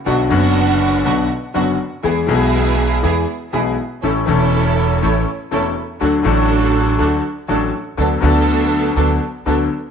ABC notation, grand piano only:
X:1
M:4/4
L:1/8
Q:1/4=121
K:Bdor
V:1 name="Grand piano" clef=bass
[B,,,B,,D,F,B,F] [F,,,F,,D,F,B,F]3 [B,,,B,,D,F,B,F] z [F,,,F,,D,F,B,F] z | [E,,E,G,B,G] [B,,,B,,E,G,B,G]3 [E,,E,G,B,G] z [B,,,B,,E,G,B,G] z | [A,,,A,,E,A,CA] [E,,,E,,E,A,CA]3 [A,,,A,,E,A,CA] z [E,,,E,,E,A,CA] z | [D,,D,F,A,DA] [A,,,A,,F,A,DA]3 [D,,D,F,A,DA] z [A,,,A,,F,A,DA] z |
[D,,D,F,B,DA] [D,,D,F,B,DA]3 [D,,D,F,B,DA] z [D,,D,F,B,DA] z |]